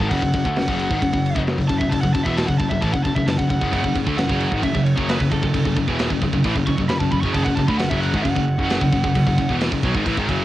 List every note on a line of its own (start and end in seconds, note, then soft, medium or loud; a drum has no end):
0.00 0.10 G#1 loud
0.00 0.11 G#2 medium
0.00 0.11 D#3 loud
0.09 0.22 F#1 loud
0.09 0.22 F#2 loud
0.09 0.22 C#3 loud
0.09 1.42 F#5 loud
0.09 kick loud
0.09 crash medium
0.22 0.33 F#1 medium
0.22 0.33 F#2 medium
0.22 0.34 C#3 medium
0.22 kick medium
0.34 0.45 F#1 medium
0.34 0.45 F#2 medium
0.34 0.45 C#3 medium
0.34 kick medium
0.34 crash medium
0.45 0.56 D2 medium
0.45 0.56 D3 loud
0.45 0.57 A3 loud
0.45 kick medium
0.56 0.68 F#1 medium
0.56 0.67 F#2 medium
0.56 0.68 C#3 medium
0.56 snare loud
0.56 crash medium
0.68 0.89 F#1 medium
0.68 0.90 F#2 loud
0.68 0.90 C#3 loud
0.68 0.90 F#3 loud
0.68 kick loud
0.80 crash medium
0.91 1.01 G#1 medium
0.91 1.02 G#2 medium
0.91 1.02 D#3 loud
0.91 kick loud
1.02 1.13 F#1 medium
1.02 1.12 F#2 medium
1.02 1.12 C#3 medium
1.02 kick medium
1.02 crash medium
1.13 1.34 F#1 medium
1.13 1.31 F#2 medium
1.13 1.31 C#3 medium
1.13 kick medium
1.26 crash medium
1.35 1.57 F#1 loud
1.35 1.57 F#2 loud
1.35 1.57 C#3 medium
1.35 1.58 F#3 loud
1.35 kick loud
1.47 snare loud
1.47 crash medium
1.58 1.69 F#1 medium
1.58 1.68 F#2 medium
1.58 1.68 C#3 medium
1.58 kick medium
1.68 1.80 F#1 medium
1.68 1.80 F#2 medium
1.68 1.80 C#3 medium
1.68 1.80 A5 loud
1.68 kick medium
1.68 crash medium
1.79 1.92 F#1 medium
1.79 1.90 F#2 medium
1.79 1.90 C#3 medium
1.79 1.91 E5 loud
1.79 kick medium
1.90 2.03 F#1 medium
1.90 2.02 F#2 medium
1.90 2.02 C#3 medium
1.90 2.01 A5 loud
1.90 kick loud
1.90 crash medium
2.01 2.14 F#1 medium
2.01 2.13 F#2 medium
2.01 2.14 C#3 medium
2.01 2.13 F#5 loud
2.01 kick medium
2.14 2.26 F#1 medium
2.14 2.25 F#2 medium
2.14 2.26 C#3 medium
2.14 2.25 A5 loud
2.14 kick medium
2.14 crash medium
2.24 2.47 E1 medium
2.24 2.48 E2 medium
2.24 2.48 B2 medium
2.24 2.48 E3 loud
2.24 2.36 E5 loud
2.24 kick medium
2.37 2.47 A5 medium
2.37 snare loud
2.37 crash medium
2.47 2.59 F#1 medium
2.47 2.59 F#2 medium
2.47 2.59 C#3 medium
2.47 2.58 F#5 medium
2.47 kick medium
2.58 2.70 F#1 medium
2.58 2.71 F#2 medium
2.58 2.71 C#3 medium
2.58 2.70 A5 loud
2.58 kick medium
2.58 crash medium
2.69 2.82 F#1 medium
2.69 2.83 F#2 medium
2.69 2.81 C#3 medium
2.69 2.81 E5 medium
2.69 kick medium
2.81 2.93 A1 medium
2.81 2.93 A2 medium
2.81 2.93 E3 loud
2.81 2.93 A5 medium
2.81 kick medium
2.81 crash medium
2.93 3.04 F#1 medium
2.93 3.05 F#2 medium
2.93 3.05 C#3 medium
2.93 3.03 F#5 medium
2.93 kick medium
3.04 3.16 F#1 medium
3.04 3.16 F#2 medium
3.04 3.16 C#3 medium
3.04 3.15 A5 loud
3.04 kick medium
3.04 crash medium
3.15 3.26 F#1 medium
3.15 3.27 F#2 medium
3.15 3.27 C#3 medium
3.15 3.27 E5 loud
3.15 kick medium
3.26 3.38 F#1 medium
3.26 3.38 F#2 medium
3.26 3.39 C#3 medium
3.26 3.38 A5 loud
3.26 snare loud
3.26 crash medium
3.38 3.50 F#1 medium
3.38 3.49 F#2 medium
3.38 3.50 C#3 medium
3.38 3.49 F#5 medium
3.38 kick medium
3.50 3.61 F#1 medium
3.50 3.60 F#2 medium
3.50 3.61 C#3 medium
3.50 3.94 F#5 loud
3.50 kick medium
3.50 crash medium
3.61 3.72 F#1 loud
3.61 3.72 F#2 medium
3.61 3.73 C#3 loud
3.61 kick medium
3.73 3.84 F#1 loud
3.73 3.83 F#2 loud
3.73 3.84 C#3 loud
3.73 kick medium
3.73 crash medium
3.84 3.95 F#1 medium
3.84 3.95 F#2 medium
3.84 3.96 C#3 medium
3.84 kick medium
3.96 4.06 F#1 medium
3.96 4.07 F#2 medium
3.96 4.06 C#3 medium
3.96 kick medium
3.96 crash medium
4.07 4.17 D2 medium
4.07 4.18 D3 medium
4.07 4.18 A3 medium
4.07 kick medium
4.17 4.29 F#1 medium
4.17 4.28 F#2 medium
4.17 4.29 C#3 medium
4.17 4.62 F#5 loud
4.17 snare loud
4.17 crash medium
4.29 4.51 F#1 medium
4.29 4.51 F#2 medium
4.29 4.52 C#3 loud
4.29 4.52 F#3 loud
4.29 kick loud
4.40 crash medium
4.52 4.63 G#1 medium
4.52 4.63 G#2 medium
4.52 4.63 D#3 loud
4.52 kick loud
4.63 4.74 F#1 medium
4.63 4.73 F#2 medium
4.63 4.73 C#3 medium
4.63 4.84 E5 loud
4.63 kick medium
4.63 crash medium
4.74 4.96 F#1 medium
4.74 4.93 F#2 medium
4.74 4.93 C#3 medium
4.74 kick medium
4.84 5.07 C#5 medium
4.84 crash medium
4.96 5.19 F#1 loud
4.96 5.18 F#2 medium
4.96 5.19 C#3 loud
4.96 5.19 F#3 loud
4.96 kick loud
5.09 5.30 B4 loud
5.09 snare loud
5.09 crash medium
5.19 5.31 F#1 medium
5.19 5.30 F#2 medium
5.19 5.30 C#3 medium
5.19 kick medium
5.31 5.42 F#1 medium
5.31 5.41 F#2 medium
5.31 5.42 C#3 medium
5.31 5.75 A4 loud
5.31 kick medium
5.31 crash medium
5.42 5.53 F#1 medium
5.42 5.52 F#2 medium
5.42 5.53 C#3 medium
5.42 kick medium
5.54 5.65 F#1 medium
5.54 5.64 F#2 medium
5.54 5.64 C#3 medium
5.54 kick loud
5.54 crash medium
5.65 5.76 F#1 medium
5.65 5.75 F#2 medium
5.65 5.76 C#3 medium
5.65 kick medium
5.76 5.87 F#1 medium
5.76 5.87 F#2 medium
5.76 5.88 C#3 medium
5.76 kick medium
5.76 crash medium
5.88 6.09 E1 medium
5.88 6.10 E2 medium
5.88 6.10 B2 medium
5.88 6.10 E3 medium
5.88 kick medium
5.99 snare loud
5.99 crash medium
6.10 6.21 F#1 medium
6.10 6.21 F#2 medium
6.10 6.22 C#3 medium
6.10 kick medium
6.21 6.32 F#1 medium
6.21 6.33 F#2 medium
6.21 6.33 C#3 medium
6.21 kick medium
6.21 crash medium
6.33 6.44 F#1 medium
6.33 6.45 F#2 medium
6.33 6.44 C#3 medium
6.33 kick medium
6.44 6.55 A1 medium
6.44 6.55 A2 medium
6.44 6.56 E3 medium
6.44 kick medium
6.44 crash medium
6.56 6.66 F#1 medium
6.56 6.67 F#2 medium
6.56 6.67 C#3 medium
6.56 kick medium
6.67 6.78 F#1 medium
6.67 6.78 F#2 medium
6.67 6.78 C#3 medium
6.67 6.78 C#6 loud
6.67 kick loud
6.67 crash medium
6.78 6.89 F#1 medium
6.78 6.89 F#2 medium
6.78 6.90 C#3 medium
6.78 kick medium
6.89 7.00 F#1 medium
6.89 7.00 F#2 medium
6.89 7.01 C#3 medium
6.89 6.99 B5 loud
6.89 snare loud
6.89 crash medium
6.99 7.11 F#1 medium
6.99 7.11 F#2 medium
6.99 7.12 C#3 medium
6.99 7.11 A5 loud
6.99 kick medium
7.11 7.22 F#1 medium
7.11 7.23 F#2 medium
7.11 7.24 C#3 medium
7.11 7.21 B5 loud
7.11 kick medium
7.11 crash medium
7.21 7.34 F#1 loud
7.21 7.34 F#2 medium
7.21 7.35 C#3 loud
7.21 7.33 C#6 loud
7.21 kick medium
7.33 7.45 F#1 loud
7.33 7.46 F#2 loud
7.33 7.46 C#3 loud
7.33 7.44 A5 loud
7.33 kick loud
7.33 crash medium
7.44 7.56 F#1 medium
7.44 7.58 F#2 medium
7.44 7.58 C#3 medium
7.44 7.55 F#5 loud
7.44 kick medium
7.55 7.68 F#1 medium
7.55 7.69 F#2 medium
7.55 7.67 A5 loud
7.55 kick medium
7.55 crash medium
7.59 7.68 C#3 medium
7.68 7.79 D2 medium
7.68 7.79 D3 medium
7.68 7.80 A3 loud
7.68 7.79 B5 medium
7.68 kick medium
7.78 7.91 F#1 medium
7.78 7.90 F#2 medium
7.78 7.91 C#3 medium
7.78 7.89 F#5 medium
7.78 snare loud
7.78 crash medium
7.89 8.12 F#1 medium
7.89 8.13 F#2 medium
7.89 8.14 C#3 loud
7.89 8.14 F#3 loud
7.89 8.00 E5 loud
7.89 kick loud
8.00 8.21 F#5 loud
8.00 crash medium
8.14 8.25 G#1 medium
8.14 8.24 G#2 medium
8.14 8.24 D#3 medium
8.14 kick loud
8.22 8.36 F#1 medium
8.22 8.34 F#2 medium
8.22 8.35 C#3 medium
8.22 9.55 F#5 loud
8.22 kick medium
8.22 crash medium
8.36 8.58 F#1 medium
8.36 8.54 F#2 medium
8.36 8.54 C#3 medium
8.36 kick medium
8.48 crash medium
8.58 8.80 F#1 medium
8.58 8.80 F#2 medium
8.58 8.81 C#3 medium
8.58 8.81 F#3 loud
8.58 kick loud
8.70 snare loud
8.70 crash medium
8.81 8.92 F#1 medium
8.81 8.92 F#2 medium
8.81 8.92 C#3 medium
8.81 kick medium
8.93 9.03 F#1 medium
8.93 9.03 F#2 medium
8.93 9.03 C#3 medium
8.93 kick medium
8.93 crash medium
9.04 9.14 F#1 medium
9.04 9.14 F#2 medium
9.04 9.15 C#3 medium
9.04 kick medium
9.15 9.26 F#1 medium
9.15 9.26 F#2 medium
9.15 9.26 C#3 medium
9.15 kick loud
9.15 crash medium
9.27 9.37 F#1 medium
9.27 9.38 F#2 medium
9.27 9.38 C#3 medium
9.27 kick medium
9.38 9.49 F#1 medium
9.38 9.50 F#2 medium
9.38 9.50 C#3 medium
9.38 kick medium
9.38 crash medium
9.49 9.70 E1 loud
9.49 9.71 E2 medium
9.49 9.72 B2 loud
9.49 9.72 E3 medium
9.49 kick medium
9.61 snare loud
9.61 crash medium
9.72 9.82 F#1 medium
9.72 9.83 F#2 medium
9.72 9.83 C#3 medium
9.72 kick medium
9.83 9.94 B1 medium
9.83 9.94 B2 medium
9.83 9.94 F#3 loud
9.83 kick medium
9.83 crash medium
9.95 10.05 G#1 medium
9.95 10.05 G#2 medium
9.95 10.06 D#3 medium
9.95 kick medium
10.06 10.16 A1 medium
10.06 10.17 A2 loud
10.06 10.17 E3 loud
10.06 kick medium
10.06 crash medium
10.17 10.28 G#1 medium
10.17 10.28 G#2 medium
10.17 10.28 D#3 loud
10.17 kick medium
10.29 10.45 F#1 medium
10.29 10.45 F#2 medium
10.29 10.45 C#3 loud
10.29 10.45 F#3 loud
10.29 kick medium
10.29 crash medium